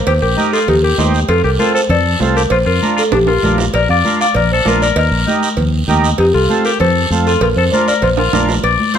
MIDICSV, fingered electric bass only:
0, 0, Header, 1, 2, 480
1, 0, Start_track
1, 0, Key_signature, -2, "major"
1, 0, Tempo, 306279
1, 103, Time_signature, 4, 2, 24, 8
1, 14078, End_track
2, 0, Start_track
2, 0, Title_t, "Fingered electric bass"
2, 0, Program_c, 0, 33
2, 109, Note_on_c, 0, 39, 89
2, 299, Note_off_c, 0, 39, 0
2, 353, Note_on_c, 0, 34, 96
2, 541, Note_off_c, 0, 34, 0
2, 1068, Note_on_c, 0, 39, 84
2, 1450, Note_off_c, 0, 39, 0
2, 1539, Note_on_c, 0, 39, 87
2, 1924, Note_off_c, 0, 39, 0
2, 2015, Note_on_c, 0, 41, 86
2, 2210, Note_off_c, 0, 41, 0
2, 2259, Note_on_c, 0, 36, 100
2, 2452, Note_off_c, 0, 36, 0
2, 2968, Note_on_c, 0, 41, 93
2, 3357, Note_off_c, 0, 41, 0
2, 3451, Note_on_c, 0, 36, 83
2, 3839, Note_off_c, 0, 36, 0
2, 3930, Note_on_c, 0, 34, 96
2, 4126, Note_off_c, 0, 34, 0
2, 4172, Note_on_c, 0, 41, 100
2, 4367, Note_off_c, 0, 41, 0
2, 4899, Note_on_c, 0, 34, 87
2, 5283, Note_off_c, 0, 34, 0
2, 5377, Note_on_c, 0, 34, 87
2, 5762, Note_off_c, 0, 34, 0
2, 5859, Note_on_c, 0, 34, 87
2, 6051, Note_off_c, 0, 34, 0
2, 6097, Note_on_c, 0, 41, 99
2, 6289, Note_off_c, 0, 41, 0
2, 6817, Note_on_c, 0, 34, 90
2, 7201, Note_off_c, 0, 34, 0
2, 7303, Note_on_c, 0, 34, 81
2, 7685, Note_off_c, 0, 34, 0
2, 7773, Note_on_c, 0, 39, 89
2, 7967, Note_off_c, 0, 39, 0
2, 8015, Note_on_c, 0, 34, 112
2, 8208, Note_off_c, 0, 34, 0
2, 8734, Note_on_c, 0, 39, 91
2, 9120, Note_off_c, 0, 39, 0
2, 9212, Note_on_c, 0, 39, 95
2, 9599, Note_off_c, 0, 39, 0
2, 9694, Note_on_c, 0, 41, 91
2, 9888, Note_off_c, 0, 41, 0
2, 9942, Note_on_c, 0, 36, 105
2, 10132, Note_off_c, 0, 36, 0
2, 10659, Note_on_c, 0, 41, 92
2, 11043, Note_off_c, 0, 41, 0
2, 11134, Note_on_c, 0, 41, 99
2, 11520, Note_off_c, 0, 41, 0
2, 11611, Note_on_c, 0, 34, 95
2, 11806, Note_off_c, 0, 34, 0
2, 11851, Note_on_c, 0, 41, 105
2, 12047, Note_off_c, 0, 41, 0
2, 12576, Note_on_c, 0, 34, 95
2, 12962, Note_off_c, 0, 34, 0
2, 13056, Note_on_c, 0, 34, 91
2, 13442, Note_off_c, 0, 34, 0
2, 13533, Note_on_c, 0, 34, 82
2, 13728, Note_off_c, 0, 34, 0
2, 14078, End_track
0, 0, End_of_file